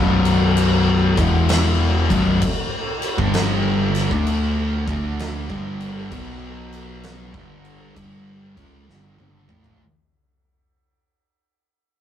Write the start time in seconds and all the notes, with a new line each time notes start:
Already playing: B0 B1 F#2 B2
0.25 crash
0.57 crash
1.17 E1 E2 B2 E3, kick, crash
1.49 snare, crash
2.10 B0 B1 F#2 B2, kick, crash
2.42 kick, crash
3.02 crash
3.18 G1 G2 D3 G3, kick
3.34 snare, crash
3.95 snare, crash
4.11 D2 D3 A3 D4, kick
4.27 crash
4.87 D2 D3 A3 D4, kick, crash
5.19 snare, crash
5.49 G1 G2 D3 G3, kick
5.80 crash
6.10 B1 B2 F#3 B3, kick, crash
6.72 crash
7.03 snare, crash
7.33 G1 G2 D3 G3, kick
7.65 crash
7.95 G1 G2 D3 G3, kick, crash
8.56 C#2 C#3 G#3 C#4, kick, crash
8.88 G1 G2 D3, snare
9.18 G1 G2 D3, high tom
9.48 A1 A2 E3 A3, mid tom
9.64 floor tom